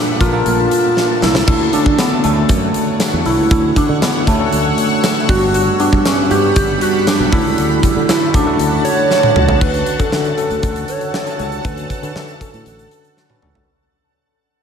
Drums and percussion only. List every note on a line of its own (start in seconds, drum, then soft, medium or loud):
0.21 kick loud
0.21 closed hi-hat medium
0.46 closed hi-hat medium
0.71 closed hi-hat medium
0.97 snare medium
1.22 snare medium
1.35 snare loud
1.48 kick loud
1.48 crash medium
1.73 closed hi-hat medium
1.86 kick loud
1.98 snare loud
1.98 closed hi-hat medium
1.98 tambourine medium
2.24 closed hi-hat medium
2.49 kick loud
2.49 closed hi-hat medium
2.74 closed hi-hat medium
3.00 snare loud
3.00 closed hi-hat loud
3.00 tambourine medium
3.25 open hi-hat medium
3.51 kick loud
3.51 closed hi-hat medium
3.76 kick medium
3.76 closed hi-hat medium
4.02 snare loud
4.02 closed hi-hat medium
4.02 tambourine medium
4.27 kick loud
4.27 closed hi-hat medium
4.53 closed hi-hat medium
4.78 closed hi-hat medium
5.04 snare loud
5.04 closed hi-hat loud
5.04 tambourine medium
5.29 kick loud
5.29 open hi-hat medium
5.54 closed hi-hat medium
5.80 closed hi-hat medium
5.93 kick loud
6.05 snare loud
6.05 closed hi-hat medium
6.05 tambourine medium
6.31 closed hi-hat medium
6.56 kick loud
6.56 closed hi-hat medium
6.81 closed hi-hat medium
7.07 snare loud
7.07 closed hi-hat loud
7.07 tambourine medium
7.33 kick loud
7.33 open hi-hat medium
7.58 closed hi-hat medium
7.83 kick medium
7.83 closed hi-hat medium
8.09 snare loud
8.09 closed hi-hat medium
8.09 tambourine medium
8.34 kick loud
8.34 closed hi-hat medium
8.59 closed hi-hat medium
8.85 closed hi-hat medium
9.11 snare medium
9.23 high tom medium
9.36 mid tom medium
9.48 floor tom loud
9.61 kick loud
9.61 crash medium
9.74 closed hi-hat medium
9.86 closed hi-hat medium
9.99 kick medium
9.99 closed hi-hat medium
10.12 snare medium
10.25 closed hi-hat soft
10.38 closed hi-hat medium
10.51 closed hi-hat soft
10.63 kick medium
10.63 closed hi-hat medium
10.76 closed hi-hat medium
10.88 closed hi-hat medium
11.01 closed hi-hat soft
11.14 snare medium
11.27 closed hi-hat soft
11.39 closed hi-hat medium
11.52 closed hi-hat soft
11.65 kick loud
11.65 closed hi-hat medium
11.77 closed hi-hat medium
11.90 kick medium
11.90 closed hi-hat medium
12.03 closed hi-hat medium
12.16 snare medium
12.28 closed hi-hat soft
12.41 kick medium
12.41 closed hi-hat medium
12.54 closed hi-hat soft
12.66 closed hi-hat medium
12.79 closed hi-hat soft
12.91 closed hi-hat medium
13.04 closed hi-hat soft
13.17 snare soft
13.30 high tom medium
13.42 mid tom medium
13.55 floor tom medium